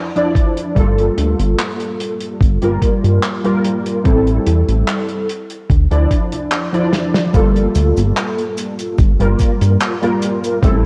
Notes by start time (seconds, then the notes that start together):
Already playing: F3 D4 E4 D5
0.15 F3 D4 E4 D5, closed hi-hat
0.35 kick, closed hi-hat
0.57 closed hi-hat
0.75 G1 G3 A#3 F4 A4, kick, closed hi-hat
0.98 closed hi-hat
1.18 D2, closed hi-hat
1.39 G1, closed hi-hat
1.59 clap, closed hi-hat
1.80 closed hi-hat
2.00 closed hi-hat
2.21 closed hi-hat
2.41 G1, kick, closed hi-hat
2.62 G1 G3 A#3 F4 A#4, closed hi-hat
2.82 kick, closed hi-hat
3.04 G2, closed hi-hat
3.23 clap, closed hi-hat
3.44 G3 A#3 F4 A#4, closed hi-hat
3.65 closed hi-hat
3.86 closed hi-hat
4.04 A1 G3 C4 E4 A4, kick, closed hi-hat
4.27 closed hi-hat
4.47 E2, closed hi-hat
4.68 A1, closed hi-hat
4.88 clap, closed hi-hat
5.08 closed hi-hat
5.29 closed hi-hat
5.50 closed hi-hat
5.70 D2, kick, closed hi-hat
5.91 D2 F3 D4 E4 D5, closed hi-hat
6.11 kick, closed hi-hat
6.32 C2, closed hi-hat
6.52 clap, closed hi-hat
6.73 F3 D4 E4 D5, closed hi-hat
6.93 snare, closed hi-hat
7.14 snare, closed hi-hat
7.33 G1 G3 A#3 F4 A4, kick, closed hi-hat, cabasa
7.56 closed hi-hat
7.75 D2, closed hi-hat, cabasa
7.97 G1, closed hi-hat, cabasa
8.17 clap, closed hi-hat, cabasa
8.38 closed hi-hat
8.57 closed hi-hat, cabasa
8.79 closed hi-hat, cabasa
8.98 G1, kick, closed hi-hat, cabasa
9.19 G1 G3 A#3 F4 A#4, closed hi-hat
9.39 kick, closed hi-hat, cabasa
9.61 G2, closed hi-hat, cabasa
9.80 clap, closed hi-hat, cabasa
10.02 G3 A#3 F4 A#4, closed hi-hat
10.22 closed hi-hat, cabasa
10.44 closed hi-hat, cabasa
10.62 A1 G3 C4 E4 A4, kick, closed hi-hat, cabasa